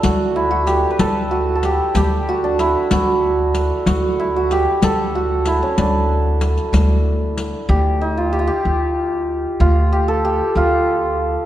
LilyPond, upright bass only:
\new Staff \with { instrumentName = "Upright bass" } { \clef bass \time 6/8 \tempo 4. = 63 d,4. d,4. | d,4. d,4. | d,4. d,4. | d,4. d,4. |
d,4. d,4. | d,4. d,4. | }